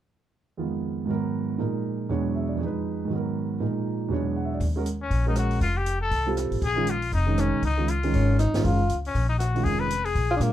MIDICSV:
0, 0, Header, 1, 6, 480
1, 0, Start_track
1, 0, Tempo, 252207
1, 1081, Time_signature, 4, 2, 24, 8
1, 20035, End_track
2, 0, Start_track
2, 0, Title_t, "Trumpet"
2, 0, Program_c, 0, 56
2, 9554, Note_on_c, 0, 61, 73
2, 9987, Note_off_c, 0, 61, 0
2, 10057, Note_on_c, 0, 63, 70
2, 10215, Note_off_c, 0, 63, 0
2, 10237, Note_on_c, 0, 66, 71
2, 10666, Note_off_c, 0, 66, 0
2, 10687, Note_on_c, 0, 65, 82
2, 10982, Note_on_c, 0, 67, 76
2, 11011, Note_off_c, 0, 65, 0
2, 11440, Note_off_c, 0, 67, 0
2, 11451, Note_on_c, 0, 69, 89
2, 12076, Note_off_c, 0, 69, 0
2, 12648, Note_on_c, 0, 68, 91
2, 13138, Note_on_c, 0, 65, 78
2, 13167, Note_off_c, 0, 68, 0
2, 13570, Note_off_c, 0, 65, 0
2, 13582, Note_on_c, 0, 63, 76
2, 14083, Note_on_c, 0, 61, 68
2, 14111, Note_off_c, 0, 63, 0
2, 14540, Note_off_c, 0, 61, 0
2, 14559, Note_on_c, 0, 63, 81
2, 15030, Note_on_c, 0, 65, 68
2, 15058, Note_off_c, 0, 63, 0
2, 15972, Note_off_c, 0, 65, 0
2, 17258, Note_on_c, 0, 61, 69
2, 17677, Note_off_c, 0, 61, 0
2, 17687, Note_on_c, 0, 63, 66
2, 17773, Note_off_c, 0, 63, 0
2, 17864, Note_on_c, 0, 66, 76
2, 18349, Note_on_c, 0, 68, 85
2, 18378, Note_off_c, 0, 66, 0
2, 18653, Note_on_c, 0, 71, 84
2, 18681, Note_off_c, 0, 68, 0
2, 19132, Note_on_c, 0, 68, 79
2, 19160, Note_off_c, 0, 71, 0
2, 19802, Note_off_c, 0, 68, 0
2, 20035, End_track
3, 0, Start_track
3, 0, Title_t, "Tenor saxophone"
3, 0, Program_c, 1, 66
3, 15487, Note_on_c, 1, 61, 70
3, 15928, Note_off_c, 1, 61, 0
3, 15965, Note_on_c, 1, 63, 77
3, 16449, Note_on_c, 1, 65, 78
3, 16478, Note_off_c, 1, 63, 0
3, 17064, Note_off_c, 1, 65, 0
3, 19619, Note_on_c, 1, 65, 87
3, 19659, Note_off_c, 1, 65, 0
3, 19726, Note_on_c, 1, 62, 81
3, 19819, Note_on_c, 1, 58, 77
3, 19848, Note_off_c, 1, 62, 0
3, 20035, Note_off_c, 1, 58, 0
3, 20035, End_track
4, 0, Start_track
4, 0, Title_t, "Grand piano"
4, 0, Program_c, 2, 0
4, 1093, Note_on_c, 2, 41, 38
4, 1094, Note_on_c, 2, 51, 34
4, 1103, Note_on_c, 2, 56, 34
4, 1110, Note_on_c, 2, 59, 34
4, 1121, Note_on_c, 2, 65, 39
4, 2006, Note_off_c, 2, 51, 0
4, 2010, Note_on_c, 2, 44, 51
4, 2035, Note_on_c, 2, 51, 46
4, 2048, Note_off_c, 2, 41, 0
4, 2052, Note_off_c, 2, 59, 0
4, 2053, Note_off_c, 2, 56, 0
4, 2056, Note_on_c, 2, 54, 46
4, 2062, Note_off_c, 2, 65, 0
4, 2081, Note_on_c, 2, 59, 43
4, 2106, Note_on_c, 2, 70, 56
4, 2987, Note_off_c, 2, 44, 0
4, 2999, Note_off_c, 2, 51, 0
4, 3010, Note_off_c, 2, 54, 0
4, 3010, Note_on_c, 2, 46, 42
4, 3017, Note_off_c, 2, 70, 0
4, 3020, Note_on_c, 2, 53, 39
4, 3022, Note_off_c, 2, 59, 0
4, 3030, Note_on_c, 2, 56, 40
4, 3030, Note_on_c, 2, 63, 40
4, 3045, Note_on_c, 2, 70, 46
4, 3965, Note_off_c, 2, 56, 0
4, 3967, Note_off_c, 2, 46, 0
4, 3972, Note_off_c, 2, 53, 0
4, 3976, Note_on_c, 2, 40, 48
4, 3977, Note_off_c, 2, 63, 0
4, 3985, Note_off_c, 2, 70, 0
4, 3986, Note_on_c, 2, 47, 43
4, 3986, Note_on_c, 2, 54, 44
4, 3993, Note_on_c, 2, 56, 45
4, 4004, Note_on_c, 2, 73, 52
4, 4007, Note_on_c, 2, 62, 43
4, 4477, Note_on_c, 2, 76, 36
4, 4720, Note_on_c, 2, 74, 39
4, 4817, Note_off_c, 2, 76, 0
4, 4844, Note_on_c, 2, 41, 48
4, 4895, Note_on_c, 2, 53, 44
4, 4925, Note_off_c, 2, 56, 0
4, 4930, Note_off_c, 2, 40, 0
4, 4935, Note_off_c, 2, 47, 0
4, 4935, Note_off_c, 2, 54, 0
4, 4944, Note_off_c, 2, 73, 0
4, 4946, Note_off_c, 2, 62, 0
4, 4954, Note_on_c, 2, 56, 43
4, 5004, Note_on_c, 2, 63, 44
4, 5038, Note_off_c, 2, 74, 0
4, 5056, Note_on_c, 2, 71, 51
4, 5803, Note_on_c, 2, 44, 45
4, 5844, Note_off_c, 2, 41, 0
4, 5848, Note_on_c, 2, 51, 41
4, 5870, Note_off_c, 2, 53, 0
4, 5899, Note_off_c, 2, 56, 0
4, 5902, Note_on_c, 2, 54, 43
4, 5924, Note_off_c, 2, 63, 0
4, 5950, Note_off_c, 2, 71, 0
4, 5960, Note_on_c, 2, 59, 42
4, 6009, Note_on_c, 2, 70, 49
4, 6803, Note_off_c, 2, 44, 0
4, 6826, Note_off_c, 2, 51, 0
4, 6848, Note_off_c, 2, 70, 0
4, 6853, Note_off_c, 2, 54, 0
4, 6854, Note_on_c, 2, 46, 44
4, 6861, Note_on_c, 2, 53, 37
4, 6861, Note_on_c, 2, 56, 41
4, 6866, Note_on_c, 2, 63, 39
4, 6876, Note_on_c, 2, 70, 45
4, 6882, Note_off_c, 2, 59, 0
4, 7768, Note_on_c, 2, 40, 49
4, 7797, Note_on_c, 2, 47, 42
4, 7802, Note_off_c, 2, 56, 0
4, 7804, Note_on_c, 2, 54, 45
4, 7808, Note_off_c, 2, 46, 0
4, 7811, Note_off_c, 2, 53, 0
4, 7815, Note_off_c, 2, 63, 0
4, 7819, Note_off_c, 2, 70, 0
4, 7830, Note_on_c, 2, 56, 47
4, 7842, Note_on_c, 2, 62, 47
4, 7860, Note_on_c, 2, 73, 51
4, 8304, Note_on_c, 2, 78, 38
4, 8467, Note_on_c, 2, 76, 39
4, 8558, Note_off_c, 2, 78, 0
4, 8631, Note_on_c, 2, 74, 40
4, 8692, Note_off_c, 2, 76, 0
4, 8745, Note_off_c, 2, 40, 0
4, 8759, Note_off_c, 2, 47, 0
4, 8763, Note_off_c, 2, 54, 0
4, 8776, Note_off_c, 2, 56, 0
4, 8782, Note_off_c, 2, 62, 0
4, 8791, Note_off_c, 2, 73, 0
4, 8855, Note_off_c, 2, 74, 0
4, 9055, Note_on_c, 2, 56, 52
4, 9059, Note_on_c, 2, 61, 44
4, 9075, Note_on_c, 2, 66, 47
4, 9088, Note_on_c, 2, 70, 53
4, 9227, Note_off_c, 2, 56, 0
4, 9229, Note_off_c, 2, 61, 0
4, 9237, Note_off_c, 2, 66, 0
4, 9243, Note_off_c, 2, 70, 0
4, 10013, Note_on_c, 2, 56, 52
4, 10017, Note_on_c, 2, 61, 49
4, 10032, Note_on_c, 2, 66, 45
4, 10037, Note_on_c, 2, 70, 58
4, 10646, Note_off_c, 2, 56, 0
4, 10647, Note_off_c, 2, 61, 0
4, 10655, Note_off_c, 2, 66, 0
4, 10657, Note_off_c, 2, 70, 0
4, 11926, Note_on_c, 2, 55, 60
4, 11926, Note_on_c, 2, 60, 53
4, 11936, Note_on_c, 2, 65, 52
4, 11944, Note_on_c, 2, 69, 63
4, 12561, Note_off_c, 2, 55, 0
4, 12561, Note_off_c, 2, 60, 0
4, 12566, Note_off_c, 2, 65, 0
4, 12570, Note_off_c, 2, 69, 0
4, 12855, Note_on_c, 2, 51, 57
4, 12865, Note_on_c, 2, 56, 52
4, 12866, Note_on_c, 2, 61, 51
4, 12887, Note_on_c, 2, 65, 65
4, 13045, Note_off_c, 2, 51, 0
4, 13050, Note_off_c, 2, 56, 0
4, 13051, Note_off_c, 2, 61, 0
4, 13061, Note_off_c, 2, 65, 0
4, 13828, Note_on_c, 2, 51, 54
4, 13830, Note_on_c, 2, 56, 50
4, 13847, Note_on_c, 2, 61, 49
4, 13858, Note_on_c, 2, 63, 59
4, 14471, Note_off_c, 2, 51, 0
4, 14472, Note_off_c, 2, 56, 0
4, 14481, Note_off_c, 2, 61, 0
4, 14486, Note_off_c, 2, 63, 0
4, 14790, Note_on_c, 2, 51, 45
4, 14799, Note_on_c, 2, 56, 39
4, 14816, Note_on_c, 2, 61, 39
4, 14819, Note_on_c, 2, 65, 48
4, 14972, Note_off_c, 2, 51, 0
4, 14976, Note_off_c, 2, 56, 0
4, 14985, Note_off_c, 2, 61, 0
4, 14987, Note_off_c, 2, 65, 0
4, 15294, Note_on_c, 2, 51, 58
4, 15299, Note_on_c, 2, 56, 52
4, 15307, Note_on_c, 2, 61, 53
4, 15315, Note_on_c, 2, 65, 61
4, 15924, Note_off_c, 2, 51, 0
4, 15926, Note_off_c, 2, 56, 0
4, 15930, Note_off_c, 2, 61, 0
4, 15934, Note_off_c, 2, 65, 0
4, 16254, Note_on_c, 2, 51, 56
4, 16267, Note_on_c, 2, 56, 53
4, 16270, Note_on_c, 2, 61, 52
4, 16274, Note_on_c, 2, 65, 64
4, 16416, Note_off_c, 2, 51, 0
4, 16422, Note_off_c, 2, 56, 0
4, 16432, Note_off_c, 2, 61, 0
4, 16439, Note_off_c, 2, 65, 0
4, 16445, Note_on_c, 2, 51, 49
4, 16450, Note_on_c, 2, 56, 47
4, 16461, Note_on_c, 2, 61, 44
4, 16468, Note_on_c, 2, 65, 55
4, 16695, Note_off_c, 2, 51, 0
4, 16698, Note_off_c, 2, 56, 0
4, 16704, Note_off_c, 2, 61, 0
4, 16707, Note_off_c, 2, 65, 0
4, 18166, Note_on_c, 2, 51, 47
4, 18177, Note_on_c, 2, 56, 45
4, 18189, Note_on_c, 2, 61, 42
4, 18190, Note_on_c, 2, 65, 54
4, 18799, Note_off_c, 2, 51, 0
4, 18805, Note_off_c, 2, 56, 0
4, 18811, Note_off_c, 2, 61, 0
4, 18811, Note_off_c, 2, 65, 0
4, 19791, Note_on_c, 2, 54, 46
4, 19794, Note_on_c, 2, 56, 44
4, 19801, Note_on_c, 2, 62, 43
4, 19811, Note_on_c, 2, 65, 49
4, 20035, Note_off_c, 2, 54, 0
4, 20035, Note_off_c, 2, 56, 0
4, 20035, Note_off_c, 2, 62, 0
4, 20035, Note_off_c, 2, 65, 0
4, 20035, End_track
5, 0, Start_track
5, 0, Title_t, "Upright bass"
5, 0, Program_c, 3, 32
5, 8766, Note_on_c, 3, 39, 72
5, 9676, Note_off_c, 3, 39, 0
5, 9714, Note_on_c, 3, 34, 70
5, 10629, Note_off_c, 3, 34, 0
5, 10675, Note_on_c, 3, 29, 66
5, 11589, Note_off_c, 3, 29, 0
5, 11637, Note_on_c, 3, 36, 70
5, 12348, Note_off_c, 3, 36, 0
5, 12385, Note_on_c, 3, 33, 55
5, 12575, Note_off_c, 3, 33, 0
5, 12594, Note_on_c, 3, 34, 75
5, 13508, Note_off_c, 3, 34, 0
5, 13548, Note_on_c, 3, 29, 74
5, 14263, Note_off_c, 3, 29, 0
5, 14313, Note_on_c, 3, 35, 58
5, 14499, Note_off_c, 3, 35, 0
5, 14514, Note_on_c, 3, 37, 67
5, 15427, Note_off_c, 3, 37, 0
5, 15491, Note_on_c, 3, 32, 71
5, 16194, Note_off_c, 3, 32, 0
5, 16228, Note_on_c, 3, 32, 55
5, 16416, Note_off_c, 3, 32, 0
5, 16447, Note_on_c, 3, 30, 68
5, 16888, Note_off_c, 3, 30, 0
5, 16911, Note_on_c, 3, 37, 64
5, 17359, Note_off_c, 3, 37, 0
5, 17406, Note_on_c, 3, 34, 75
5, 18313, Note_off_c, 3, 34, 0
5, 18381, Note_on_c, 3, 29, 70
5, 19281, Note_off_c, 3, 29, 0
5, 19323, Note_on_c, 3, 34, 74
5, 19766, Note_off_c, 3, 34, 0
5, 19790, Note_on_c, 3, 46, 63
5, 20035, Note_off_c, 3, 46, 0
5, 20035, End_track
6, 0, Start_track
6, 0, Title_t, "Drums"
6, 8760, Note_on_c, 9, 36, 27
6, 8763, Note_on_c, 9, 46, 35
6, 8951, Note_off_c, 9, 36, 0
6, 8953, Note_off_c, 9, 46, 0
6, 9243, Note_on_c, 9, 42, 42
6, 9434, Note_off_c, 9, 42, 0
6, 9716, Note_on_c, 9, 36, 28
6, 9722, Note_on_c, 9, 46, 34
6, 9907, Note_off_c, 9, 36, 0
6, 9912, Note_off_c, 9, 46, 0
6, 10193, Note_on_c, 9, 37, 51
6, 10193, Note_on_c, 9, 42, 41
6, 10384, Note_off_c, 9, 37, 0
6, 10384, Note_off_c, 9, 42, 0
6, 10479, Note_on_c, 9, 46, 28
6, 10669, Note_off_c, 9, 46, 0
6, 10676, Note_on_c, 9, 36, 28
6, 10679, Note_on_c, 9, 46, 35
6, 10866, Note_off_c, 9, 36, 0
6, 10869, Note_off_c, 9, 46, 0
6, 11154, Note_on_c, 9, 42, 43
6, 11345, Note_off_c, 9, 42, 0
6, 11636, Note_on_c, 9, 36, 27
6, 11636, Note_on_c, 9, 46, 35
6, 11826, Note_off_c, 9, 36, 0
6, 11826, Note_off_c, 9, 46, 0
6, 12122, Note_on_c, 9, 37, 48
6, 12122, Note_on_c, 9, 42, 42
6, 12312, Note_off_c, 9, 37, 0
6, 12312, Note_off_c, 9, 42, 0
6, 12403, Note_on_c, 9, 46, 28
6, 12593, Note_off_c, 9, 46, 0
6, 12594, Note_on_c, 9, 36, 28
6, 12596, Note_on_c, 9, 46, 34
6, 12785, Note_off_c, 9, 36, 0
6, 12787, Note_off_c, 9, 46, 0
6, 13070, Note_on_c, 9, 42, 44
6, 13260, Note_off_c, 9, 42, 0
6, 13362, Note_on_c, 9, 46, 30
6, 13552, Note_off_c, 9, 46, 0
6, 13554, Note_on_c, 9, 36, 26
6, 13558, Note_on_c, 9, 46, 35
6, 13744, Note_off_c, 9, 36, 0
6, 13748, Note_off_c, 9, 46, 0
6, 14039, Note_on_c, 9, 37, 50
6, 14039, Note_on_c, 9, 42, 40
6, 14230, Note_off_c, 9, 37, 0
6, 14230, Note_off_c, 9, 42, 0
6, 14512, Note_on_c, 9, 36, 27
6, 14515, Note_on_c, 9, 46, 37
6, 14703, Note_off_c, 9, 36, 0
6, 14705, Note_off_c, 9, 46, 0
6, 14998, Note_on_c, 9, 42, 44
6, 15188, Note_off_c, 9, 42, 0
6, 15284, Note_on_c, 9, 46, 30
6, 15475, Note_off_c, 9, 46, 0
6, 15484, Note_on_c, 9, 36, 28
6, 15486, Note_on_c, 9, 46, 37
6, 15674, Note_off_c, 9, 36, 0
6, 15676, Note_off_c, 9, 46, 0
6, 15967, Note_on_c, 9, 37, 50
6, 15967, Note_on_c, 9, 42, 41
6, 16158, Note_off_c, 9, 37, 0
6, 16158, Note_off_c, 9, 42, 0
6, 16254, Note_on_c, 9, 38, 37
6, 16254, Note_on_c, 9, 46, 29
6, 16444, Note_off_c, 9, 38, 0
6, 16444, Note_off_c, 9, 46, 0
6, 16450, Note_on_c, 9, 36, 29
6, 16457, Note_on_c, 9, 46, 36
6, 16640, Note_off_c, 9, 36, 0
6, 16648, Note_off_c, 9, 46, 0
6, 16928, Note_on_c, 9, 42, 43
6, 17118, Note_off_c, 9, 42, 0
6, 17221, Note_on_c, 9, 46, 32
6, 17411, Note_on_c, 9, 36, 28
6, 17412, Note_off_c, 9, 46, 0
6, 17414, Note_on_c, 9, 46, 36
6, 17601, Note_off_c, 9, 36, 0
6, 17605, Note_off_c, 9, 46, 0
6, 17892, Note_on_c, 9, 37, 51
6, 17892, Note_on_c, 9, 42, 43
6, 18082, Note_off_c, 9, 37, 0
6, 18082, Note_off_c, 9, 42, 0
6, 18189, Note_on_c, 9, 46, 27
6, 18373, Note_on_c, 9, 36, 29
6, 18379, Note_off_c, 9, 46, 0
6, 18379, Note_on_c, 9, 46, 36
6, 18563, Note_off_c, 9, 36, 0
6, 18569, Note_off_c, 9, 46, 0
6, 18850, Note_on_c, 9, 42, 45
6, 19040, Note_off_c, 9, 42, 0
6, 19135, Note_on_c, 9, 46, 32
6, 19325, Note_off_c, 9, 46, 0
6, 19325, Note_on_c, 9, 46, 36
6, 19326, Note_on_c, 9, 36, 29
6, 19516, Note_off_c, 9, 36, 0
6, 19516, Note_off_c, 9, 46, 0
6, 19804, Note_on_c, 9, 37, 48
6, 19804, Note_on_c, 9, 42, 42
6, 19995, Note_off_c, 9, 37, 0
6, 19995, Note_off_c, 9, 42, 0
6, 20035, End_track
0, 0, End_of_file